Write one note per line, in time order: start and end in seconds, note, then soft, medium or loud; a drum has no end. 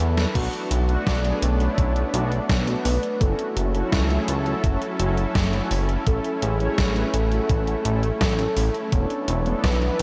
0.00 0.26 E2 loud
0.00 0.31 E3 medium
0.00 0.31 E4 medium
0.00 0.31 A4 medium
0.00 0.31 B4 medium
0.00 closed hi-hat medium
0.17 snare medium
0.17 closed hi-hat soft
0.35 0.48 B1 loud
0.35 0.85 A3 medium
0.35 3.18 A3 medium
0.35 0.85 B3 medium
0.35 3.18 B3 medium
0.35 3.18 D4 medium
0.35 0.85 D4 medium
0.35 1.03 F#4 loud
0.35 0.85 F#4 medium
0.35 kick loud
0.35 closed hi-hat medium
0.35 crash loud
0.53 closed hi-hat soft
0.71 0.97 B1 medium
0.71 closed hi-hat loud
0.89 1.20 A3 loud
0.89 1.20 B3 medium
0.89 1.20 D4 medium
0.89 1.20 F#4 loud
0.89 closed hi-hat soft
1.07 1.33 B1 loud
1.07 1.40 D5 loud
1.07 kick loud
1.07 snare loud
1.07 closed hi-hat medium
1.25 1.42 A3 medium
1.25 1.42 B3 medium
1.25 1.42 D4 medium
1.25 1.42 G#4 loud
1.25 closed hi-hat soft
1.42 1.68 B1 medium
1.42 2.46 C#5 loud
1.42 closed hi-hat loud
1.60 2.10 A3 medium
1.60 2.10 B3 medium
1.60 2.10 D4 medium
1.60 2.10 E4 medium
1.60 closed hi-hat soft
1.78 2.04 B1 medium
1.78 kick loud
1.78 closed hi-hat medium
1.96 closed hi-hat soft
2.14 2.40 B1 loud
2.14 2.31 A3 medium
2.14 2.31 B3 medium
2.14 2.31 D4 medium
2.14 2.31 F#4 loud
2.14 closed hi-hat loud
2.32 closed hi-hat soft
2.49 2.76 B1 medium
2.49 kick loud
2.49 snare loud
2.49 closed hi-hat medium
2.67 2.85 A3 medium
2.67 2.85 B3 medium
2.67 2.85 D4 medium
2.67 2.85 F#4 medium
2.67 snare soft
2.67 closed hi-hat soft
2.85 2.98 B1 medium
2.85 3.22 B4 loud
2.85 open hi-hat medium
3.03 closed hi-hat soft
3.21 3.34 F#1 loud
3.21 6.04 F#3 medium
3.21 3.70 A3 medium
3.21 8.88 C#4 medium
3.21 3.70 C#4 medium
3.21 8.88 E4 medium
3.21 3.70 E4 medium
3.21 3.70 F#4 medium
3.21 6.04 A4 medium
3.21 3.58 A4 loud
3.21 kick loud
3.21 closed hi-hat medium
3.39 closed hi-hat soft
3.56 3.83 F#1 loud
3.56 3.94 F#4 loud
3.56 closed hi-hat loud
3.75 4.06 A3 loud
3.75 4.06 C#4 medium
3.75 4.06 E4 medium
3.75 4.06 F#4 loud
3.75 closed hi-hat soft
3.92 4.18 C#2 loud
3.92 4.64 E4 medium
3.92 kick loud
3.92 snare loud
3.92 closed hi-hat medium
4.10 4.27 A3 medium
4.10 4.27 C#4 medium
4.10 4.27 E4 medium
4.10 4.27 G#4 loud
4.10 closed hi-hat soft
4.28 4.54 C#2 medium
4.28 closed hi-hat loud
4.46 4.95 A3 medium
4.46 4.95 C#4 medium
4.46 4.95 E4 medium
4.46 4.95 F#4 medium
4.46 closed hi-hat soft
4.64 4.77 F#1 medium
4.64 kick loud
4.64 closed hi-hat medium
4.82 closed hi-hat soft
5.00 5.26 F#1 medium
5.00 5.17 A3 medium
5.00 5.17 C#4 medium
5.00 5.17 E4 medium
5.00 5.17 F#4 loud
5.00 closed hi-hat loud
5.17 closed hi-hat soft
5.35 5.61 F#1 medium
5.35 kick loud
5.35 snare loud
5.35 closed hi-hat medium
5.53 5.70 A3 medium
5.53 5.70 C#4 medium
5.53 5.70 E4 medium
5.53 5.70 F#4 medium
5.53 closed hi-hat soft
5.71 5.97 F#1 loud
5.71 open hi-hat medium
5.89 closed hi-hat soft
6.07 6.20 A1 loud
6.07 8.89 A3 medium
6.07 6.56 A3 medium
6.07 6.56 C#4 medium
6.07 6.56 E4 medium
6.07 6.56 A4 medium
6.07 6.40 A4 loud
6.07 kick loud
6.07 closed hi-hat medium
6.25 closed hi-hat soft
6.42 6.68 A1 loud
6.42 7.10 G#4 medium
6.42 closed hi-hat loud
6.60 6.92 A3 loud
6.60 6.92 C#4 medium
6.60 6.92 E4 medium
6.60 6.92 C#5 loud
6.60 closed hi-hat soft
6.78 7.04 A1 loud
6.78 kick loud
6.78 snare loud
6.78 closed hi-hat medium
6.96 7.13 A3 medium
6.96 7.13 C#4 medium
6.96 7.13 E4 medium
6.96 7.13 B4 loud
6.96 closed hi-hat soft
7.14 7.40 A1 medium
7.14 7.47 A4 medium
7.14 closed hi-hat loud
7.32 7.81 A3 medium
7.32 7.81 C#4 medium
7.32 7.81 E4 medium
7.32 7.81 F#4 medium
7.32 closed hi-hat soft
7.49 7.76 A1 medium
7.49 8.17 A4 medium
7.49 kick loud
7.49 closed hi-hat medium
7.67 closed hi-hat soft
7.85 8.11 A1 loud
7.85 8.02 A3 medium
7.85 8.02 C#4 medium
7.85 8.02 E4 medium
7.85 8.02 A4 loud
7.85 closed hi-hat loud
8.03 closed hi-hat soft
8.21 8.47 A1 loud
8.21 8.88 A4 loud
8.21 kick loud
8.21 snare loud
8.21 closed hi-hat medium
8.39 8.56 A3 medium
8.39 8.56 C#4 medium
8.39 8.56 E4 medium
8.39 8.56 A4 medium
8.39 snare soft
8.39 closed hi-hat soft
8.57 8.70 A1 medium
8.57 open hi-hat medium
8.74 closed hi-hat soft
8.92 9.05 E1 loud
8.92 10.02 E3 medium
8.92 10.02 A3 medium
8.92 9.42 B3 medium
8.92 10.02 B3 medium
8.92 10.02 D4 medium
8.92 9.42 D4 medium
8.92 9.42 E4 medium
8.92 9.42 A4 medium
8.92 9.65 C#5 loud
8.92 kick loud
8.92 closed hi-hat medium
9.10 closed hi-hat soft
9.28 9.54 E1 loud
9.28 closed hi-hat medium
9.46 9.77 B3 loud
9.46 9.77 D4 medium
9.46 9.77 E4 medium
9.46 9.77 A4 loud
9.46 closed hi-hat soft
9.64 9.90 B1 loud
9.64 10.02 B4 loud
9.64 kick loud
9.64 snare loud
9.64 closed hi-hat medium
9.82 9.99 B3 medium
9.82 9.99 D4 medium
9.82 9.99 E4 medium
9.82 9.99 B4 loud
9.82 closed hi-hat soft